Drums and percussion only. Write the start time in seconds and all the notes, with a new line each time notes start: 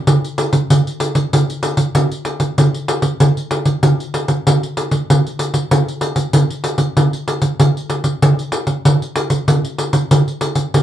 0.07 pandeiro
0.24 pandeiro
0.38 pandeiro
0.53 pandeiro
0.70 pandeiro
0.87 pandeiro
1.00 pandeiro
1.15 pandeiro
1.33 pandeiro
1.50 pandeiro
1.63 pandeiro
1.77 pandeiro
1.95 pandeiro
2.11 pandeiro
2.25 pandeiro
2.40 pandeiro
2.58 pandeiro
2.74 pandeiro
2.88 pandeiro
3.02 pandeiro
3.20 pandeiro
3.37 pandeiro
3.51 pandeiro
3.65 pandeiro
3.83 pandeiro
4.00 pandeiro
4.14 pandeiro
4.28 pandeiro
4.47 pandeiro
4.63 pandeiro
4.77 pandeiro
4.91 pandeiro
5.10 pandeiro
5.27 pandeiro
5.39 pandeiro
5.54 pandeiro
5.71 pandeiro
5.88 pandeiro
6.01 pandeiro
6.16 pandeiro
6.33 pandeiro
6.50 pandeiro
6.64 pandeiro
6.78 pandeiro
6.97 pandeiro
7.13 pandeiro
7.28 pandeiro
7.42 pandeiro
7.60 pandeiro
7.77 pandeiro
7.90 pandeiro
8.04 pandeiro
8.22 pandeiro
8.39 pandeiro
8.52 pandeiro
8.67 pandeiro
8.85 pandeiro
9.02 pandeiro
9.16 pandeiro
9.30 pandeiro
9.48 pandeiro
9.65 pandeiro
9.78 pandeiro
9.93 pandeiro
10.11 pandeiro
10.28 pandeiro
10.41 pandeiro
10.55 pandeiro
10.74 pandeiro